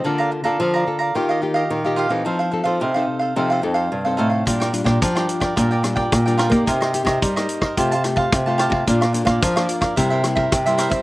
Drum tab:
HH |----------------|----------------|xxxxxxxxx-x-xxxx|xxxxxxx-xxx-x-x-|
SD |----------------|----------------|-r-r-r-r--r-r-r-|-r-r-r-r--r-r-r-|
BD |----------------|----------------|o--oo--oo--oo--o|o--oo--oo--oo--o|

HH |xxxxxxxxx-x-xxxx|
SD |-r-r-r-r--r-r-r-|
BD |o--oo--oo--oo--o|